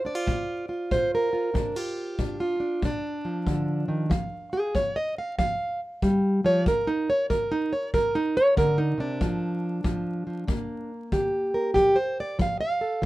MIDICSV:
0, 0, Header, 1, 3, 480
1, 0, Start_track
1, 0, Key_signature, -2, "major"
1, 0, Tempo, 637620
1, 1169, Time_signature, 4, 2, 24, 8
1, 9829, End_track
2, 0, Start_track
2, 0, Title_t, "Steel-string acoustic guitar"
2, 0, Program_c, 0, 25
2, 0, Note_on_c, 0, 46, 72
2, 37, Note_on_c, 0, 62, 43
2, 48, Note_on_c, 0, 74, 92
2, 113, Note_off_c, 0, 62, 0
2, 113, Note_on_c, 0, 65, 40
2, 171, Note_off_c, 0, 46, 0
2, 200, Note_on_c, 0, 46, 77
2, 510, Note_off_c, 0, 65, 0
2, 519, Note_on_c, 0, 65, 50
2, 651, Note_off_c, 0, 46, 0
2, 685, Note_on_c, 0, 46, 75
2, 687, Note_off_c, 0, 74, 0
2, 690, Note_on_c, 0, 72, 87
2, 850, Note_off_c, 0, 72, 0
2, 864, Note_on_c, 0, 70, 86
2, 998, Note_off_c, 0, 65, 0
2, 1001, Note_on_c, 0, 65, 49
2, 1134, Note_off_c, 0, 46, 0
2, 1156, Note_on_c, 0, 46, 73
2, 1157, Note_off_c, 0, 65, 0
2, 1160, Note_on_c, 0, 62, 46
2, 1326, Note_off_c, 0, 62, 0
2, 1326, Note_on_c, 0, 65, 44
2, 1333, Note_off_c, 0, 70, 0
2, 1333, Note_on_c, 0, 67, 84
2, 1610, Note_off_c, 0, 46, 0
2, 1646, Note_on_c, 0, 46, 68
2, 1655, Note_on_c, 0, 62, 44
2, 1799, Note_off_c, 0, 65, 0
2, 1808, Note_on_c, 0, 65, 90
2, 1811, Note_off_c, 0, 67, 0
2, 1948, Note_off_c, 0, 62, 0
2, 1957, Note_on_c, 0, 62, 41
2, 2094, Note_off_c, 0, 46, 0
2, 2124, Note_on_c, 0, 46, 81
2, 2129, Note_off_c, 0, 65, 0
2, 2138, Note_off_c, 0, 62, 0
2, 2148, Note_on_c, 0, 62, 107
2, 2446, Note_on_c, 0, 53, 47
2, 2574, Note_off_c, 0, 46, 0
2, 2608, Note_on_c, 0, 50, 66
2, 2920, Note_off_c, 0, 50, 0
2, 2923, Note_on_c, 0, 51, 66
2, 3075, Note_off_c, 0, 53, 0
2, 3084, Note_on_c, 0, 53, 72
2, 3089, Note_off_c, 0, 51, 0
2, 3092, Note_on_c, 0, 77, 50
2, 3098, Note_off_c, 0, 62, 0
2, 3410, Note_on_c, 0, 68, 93
2, 3533, Note_off_c, 0, 53, 0
2, 3569, Note_off_c, 0, 68, 0
2, 3573, Note_on_c, 0, 53, 64
2, 3579, Note_on_c, 0, 73, 88
2, 3731, Note_off_c, 0, 77, 0
2, 3734, Note_off_c, 0, 73, 0
2, 3734, Note_on_c, 0, 75, 83
2, 3892, Note_off_c, 0, 75, 0
2, 3903, Note_on_c, 0, 77, 83
2, 4018, Note_off_c, 0, 53, 0
2, 4045, Note_off_c, 0, 77, 0
2, 4053, Note_on_c, 0, 53, 77
2, 4055, Note_on_c, 0, 77, 105
2, 4365, Note_off_c, 0, 77, 0
2, 4498, Note_off_c, 0, 53, 0
2, 4536, Note_on_c, 0, 55, 66
2, 4846, Note_off_c, 0, 55, 0
2, 4852, Note_on_c, 0, 53, 69
2, 4861, Note_on_c, 0, 73, 101
2, 5013, Note_off_c, 0, 53, 0
2, 5015, Note_off_c, 0, 73, 0
2, 5018, Note_on_c, 0, 51, 74
2, 5029, Note_on_c, 0, 70, 93
2, 5175, Note_on_c, 0, 63, 91
2, 5179, Note_off_c, 0, 70, 0
2, 5332, Note_off_c, 0, 63, 0
2, 5342, Note_on_c, 0, 73, 87
2, 5460, Note_off_c, 0, 51, 0
2, 5492, Note_off_c, 0, 73, 0
2, 5495, Note_on_c, 0, 70, 75
2, 5498, Note_on_c, 0, 51, 70
2, 5651, Note_off_c, 0, 70, 0
2, 5658, Note_on_c, 0, 63, 91
2, 5813, Note_off_c, 0, 63, 0
2, 5816, Note_on_c, 0, 73, 85
2, 5940, Note_off_c, 0, 51, 0
2, 5972, Note_off_c, 0, 73, 0
2, 5977, Note_on_c, 0, 51, 73
2, 5978, Note_on_c, 0, 70, 95
2, 6133, Note_off_c, 0, 70, 0
2, 6137, Note_on_c, 0, 63, 90
2, 6292, Note_off_c, 0, 63, 0
2, 6301, Note_on_c, 0, 73, 110
2, 6419, Note_off_c, 0, 51, 0
2, 6450, Note_on_c, 0, 50, 69
2, 6454, Note_off_c, 0, 73, 0
2, 6460, Note_on_c, 0, 70, 90
2, 6610, Note_on_c, 0, 63, 98
2, 6614, Note_off_c, 0, 70, 0
2, 6756, Note_off_c, 0, 50, 0
2, 6759, Note_on_c, 0, 48, 67
2, 6769, Note_off_c, 0, 63, 0
2, 6777, Note_on_c, 0, 62, 93
2, 6926, Note_off_c, 0, 48, 0
2, 6929, Note_on_c, 0, 46, 77
2, 6932, Note_on_c, 0, 53, 53
2, 7375, Note_off_c, 0, 46, 0
2, 7401, Note_off_c, 0, 53, 0
2, 7406, Note_on_c, 0, 46, 77
2, 7410, Note_on_c, 0, 53, 50
2, 7722, Note_off_c, 0, 53, 0
2, 7730, Note_on_c, 0, 53, 46
2, 7853, Note_off_c, 0, 46, 0
2, 7886, Note_on_c, 0, 51, 84
2, 7889, Note_off_c, 0, 53, 0
2, 7893, Note_on_c, 0, 58, 54
2, 8212, Note_off_c, 0, 62, 0
2, 8333, Note_off_c, 0, 51, 0
2, 8372, Note_on_c, 0, 51, 80
2, 8377, Note_on_c, 0, 67, 56
2, 8690, Note_on_c, 0, 70, 56
2, 8816, Note_off_c, 0, 51, 0
2, 8829, Note_off_c, 0, 58, 0
2, 8831, Note_off_c, 0, 70, 0
2, 8832, Note_off_c, 0, 67, 0
2, 8840, Note_on_c, 0, 67, 99
2, 8853, Note_on_c, 0, 53, 80
2, 9001, Note_on_c, 0, 72, 90
2, 9003, Note_off_c, 0, 67, 0
2, 9164, Note_off_c, 0, 72, 0
2, 9186, Note_on_c, 0, 74, 93
2, 9297, Note_off_c, 0, 53, 0
2, 9326, Note_on_c, 0, 53, 76
2, 9336, Note_off_c, 0, 74, 0
2, 9348, Note_on_c, 0, 77, 84
2, 9480, Note_off_c, 0, 77, 0
2, 9489, Note_on_c, 0, 77, 109
2, 9645, Note_on_c, 0, 69, 48
2, 9773, Note_off_c, 0, 53, 0
2, 9801, Note_on_c, 0, 53, 86
2, 9829, Note_off_c, 0, 53, 0
2, 9829, Note_off_c, 0, 69, 0
2, 9829, Note_off_c, 0, 77, 0
2, 9829, End_track
3, 0, Start_track
3, 0, Title_t, "Drums"
3, 206, Note_on_c, 9, 36, 65
3, 282, Note_off_c, 9, 36, 0
3, 688, Note_on_c, 9, 36, 69
3, 763, Note_off_c, 9, 36, 0
3, 1167, Note_on_c, 9, 36, 71
3, 1242, Note_off_c, 9, 36, 0
3, 1646, Note_on_c, 9, 36, 67
3, 1722, Note_off_c, 9, 36, 0
3, 2127, Note_on_c, 9, 36, 68
3, 2202, Note_off_c, 9, 36, 0
3, 2609, Note_on_c, 9, 36, 67
3, 2684, Note_off_c, 9, 36, 0
3, 3092, Note_on_c, 9, 36, 72
3, 3168, Note_off_c, 9, 36, 0
3, 3574, Note_on_c, 9, 36, 61
3, 3649, Note_off_c, 9, 36, 0
3, 4054, Note_on_c, 9, 36, 72
3, 4130, Note_off_c, 9, 36, 0
3, 4534, Note_on_c, 9, 36, 70
3, 4610, Note_off_c, 9, 36, 0
3, 5016, Note_on_c, 9, 36, 74
3, 5091, Note_off_c, 9, 36, 0
3, 5496, Note_on_c, 9, 36, 65
3, 5572, Note_off_c, 9, 36, 0
3, 5975, Note_on_c, 9, 36, 68
3, 6050, Note_off_c, 9, 36, 0
3, 6454, Note_on_c, 9, 36, 76
3, 6529, Note_off_c, 9, 36, 0
3, 6933, Note_on_c, 9, 36, 70
3, 7008, Note_off_c, 9, 36, 0
3, 7410, Note_on_c, 9, 36, 70
3, 7486, Note_off_c, 9, 36, 0
3, 7892, Note_on_c, 9, 36, 73
3, 7967, Note_off_c, 9, 36, 0
3, 8372, Note_on_c, 9, 36, 70
3, 8447, Note_off_c, 9, 36, 0
3, 8851, Note_on_c, 9, 36, 65
3, 8926, Note_off_c, 9, 36, 0
3, 9331, Note_on_c, 9, 36, 73
3, 9406, Note_off_c, 9, 36, 0
3, 9829, End_track
0, 0, End_of_file